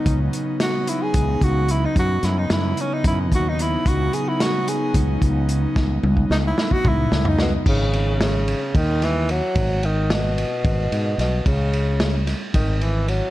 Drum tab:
CC |--------------|--------------|--------------|--------------|
RD |--------------|--------------|--------------|--------------|
HH |x-x-x-x-x-x-x-|x-x-x-x-x-x-x-|x-x-x-x-x-x-x-|--------------|
SD |----o---------|--o-o---------|----o---------|o---o-o---o-o-|
T1 |--------------|--------------|--------------|--o-----------|
T2 |--------------|--------------|--------------|--------o-----|
FT |--------------|--------------|--------------|-----------o--|
BD |o-------o-o---|o-------o-o---|o-------o-o---|o--o---oo-----|

CC |x-------------|--------------|--------------|
RD |--x-x-x-x-x-x-|x-x-x-x-x-x-x-|x-x-x-x-x-x-x-|
HH |--------------|--------------|--------------|
SD |----o-----o---|----o-------o-|----o-o-o-----|
T1 |--------------|--------------|--------------|
T2 |--------------|--------------|--------------|
FT |--------------|--------------|--------------|
BD |o-------o-----|o-------o-----|o-------o-----|